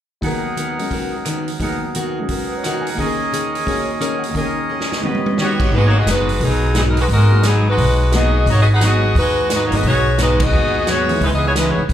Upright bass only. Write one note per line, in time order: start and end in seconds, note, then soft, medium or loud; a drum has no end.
5.71 6.04 G#1 medium
6.06 6.38 F#1 medium
6.40 7.06 B1 medium
7.09 7.74 G#1 medium
7.77 8.43 B1 medium
8.46 9.12 G#1 medium
9.15 9.68 D#2 medium
9.71 9.83 G1 medium
9.83 10.49 B1 medium
10.51 11.17 D#2 medium
11.20 11.73 C#2 medium
11.77 muted upright bass stroke soft
11.89 11.93 G#1 medium